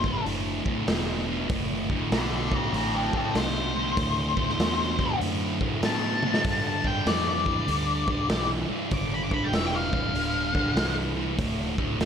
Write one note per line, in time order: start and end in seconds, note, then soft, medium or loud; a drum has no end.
0.00 0.24 G1 medium
0.00 0.24 D2 medium
0.00 0.24 B2 medium
0.00 0.22 C5 medium
0.00 kick medium
0.04 snare soft
0.25 0.63 F#1 medium
0.25 0.61 D2 medium
0.25 0.62 A2 medium
0.25 open hi-hat soft
0.65 0.85 D2 medium
0.65 0.85 A2 medium
0.65 muted fingered electric bass stroke soft
0.65 kick medium
0.87 1.48 E1 medium
0.87 1.23 D2 medium
0.87 1.24 B2 medium
0.87 snare loud
0.87 open hi-hat medium
1.27 1.47 D2 medium
1.27 1.48 B2 medium
1.49 2.10 F#1 medium
1.49 1.86 D2 medium
1.49 1.86 A2 medium
1.49 kick loud
1.49 open hi-hat medium
1.89 2.09 D2 medium
1.89 2.10 A2 medium
1.89 kick medium
2.11 2.71 B1 medium
2.11 2.48 D2 medium
2.11 2.48 B2 medium
2.11 2.33 A4 medium
2.11 2.33 D5 medium
2.11 snare loud
2.11 open hi-hat medium
2.35 2.53 A4 medium
2.35 2.54 D5 medium
2.51 2.71 D2 medium
2.51 2.71 B2 medium
2.51 2.73 A4 medium
2.51 kick medium
2.56 2.74 C5 medium
2.73 3.10 A1 medium
2.73 3.09 D2 medium
2.73 3.09 A2 medium
2.73 2.94 A4 medium
2.73 2.95 C5 medium
2.73 open hi-hat soft
2.95 3.14 F4 medium
2.95 3.15 A4 medium
3.13 3.33 D2 medium
3.13 3.33 A2 medium
3.13 3.34 F4 medium
3.13 3.36 A4 medium
3.13 kick medium
3.34 3.95 C2 medium
3.34 3.70 D2 medium
3.34 3.71 B2 medium
3.34 5.18 C5 medium
3.34 snare loud
3.34 open hi-hat medium
3.75 3.95 D2 medium
3.75 3.95 B2 medium
3.97 4.33 D2 medium
3.97 4.57 D2 medium
3.97 4.33 A2 medium
3.97 kick loud
3.97 open hi-hat medium
4.36 4.56 D2 medium
4.36 4.56 A2 medium
4.36 kick medium
4.49 snare soft
4.58 4.94 D2 medium
4.58 5.19 E2 medium
4.58 4.95 B2 medium
4.58 snare loud
4.58 open hi-hat soft
4.98 5.18 D2 medium
4.98 5.18 B2 medium
4.98 kick medium
4.98 snare soft
5.20 5.56 D2 medium
5.20 5.81 F#2 medium
5.20 5.56 A2 medium
5.20 open hi-hat soft
5.60 5.80 D2 medium
5.60 5.80 A2 medium
5.60 kick medium
5.82 6.18 D2 medium
5.82 6.42 A2 medium
5.82 6.18 B2 medium
5.82 6.64 A5 loud
5.82 snare loud
5.82 open hi-hat medium
6.22 6.42 D2 medium
6.22 6.42 B2 medium
6.22 high tom medium
6.34 snare medium
6.44 6.80 G2 medium
6.44 7.05 G2 medium
6.44 6.80 D3 medium
6.44 kick loud
6.44 open hi-hat medium
6.67 6.86 A5 medium
6.83 7.04 G2 medium
6.83 7.04 D3 medium
6.83 7.06 G5 medium
6.83 kick medium
7.06 7.66 F2 medium
7.06 7.42 G2 medium
7.06 7.42 E3 medium
7.06 7.27 D5 medium
7.06 snare loud
7.06 open hi-hat medium
7.29 8.48 D5 medium
7.46 7.66 G2 medium
7.46 7.66 E3 medium
7.46 kick medium
7.67 8.28 D2 medium
7.67 8.03 G2 medium
7.67 8.04 D3 medium
7.67 open hi-hat soft
8.07 8.27 G2 medium
8.07 8.28 D3 medium
8.07 kick medium
8.29 8.66 B1 medium
8.29 8.65 G2 medium
8.29 8.65 E3 loud
8.29 snare loud
8.29 open hi-hat medium
8.68 8.89 G2 medium
8.68 8.89 E3 medium
8.68 muted fingered electric bass stroke soft
8.90 9.51 G1 medium
8.90 9.27 G2 medium
8.90 9.27 D3 medium
8.90 9.13 D6 loud
8.90 kick loud
8.90 open hi-hat medium
9.14 9.23 B5 medium
9.24 9.29 D6 medium
9.30 9.50 G2 medium
9.30 9.51 D3 medium
9.30 9.46 B5 medium
9.30 kick medium
9.44 9.55 G5 loud
9.52 10.13 E1 medium
9.52 9.89 G2 medium
9.52 9.89 E3 loud
9.52 9.66 E5 loud
9.52 snare loud
9.52 open hi-hat soft
9.66 9.73 G5 medium
9.76 10.95 F5 loud
9.92 10.12 G2 medium
9.92 10.13 E3 medium
9.92 kick medium
10.14 10.75 D1 medium
10.14 10.51 G2 medium
10.14 10.51 D3 medium
10.14 open hi-hat soft
10.54 10.74 G2 medium
10.54 10.74 D3 medium
10.54 kick medium
10.76 11.36 C2 medium
10.76 11.12 G2 medium
10.76 11.12 E3 loud
10.76 snare loud
10.76 open hi-hat medium
11.16 11.36 G2 medium
11.16 11.36 E3 medium
11.37 11.98 D1 medium
11.37 11.74 D2 medium
11.37 11.74 A2 medium
11.37 kick loud
11.37 open hi-hat medium
11.77 11.98 D2 medium
11.77 11.98 A2 medium
11.77 kick medium
12.00 12.05 E1 loud
12.00 12.05 D2 medium
12.00 12.05 B2 medium
12.00 snare loud
12.00 open hi-hat medium